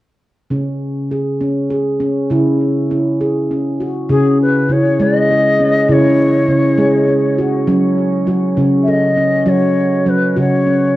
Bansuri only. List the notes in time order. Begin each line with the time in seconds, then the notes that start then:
4.09 G#4
4.42 B4
4.71 C#5
5.02 D#5
5.92 C#5
8.82 E5
8.88 D#5
9.48 C#5
10.08 B4
10.40 C#5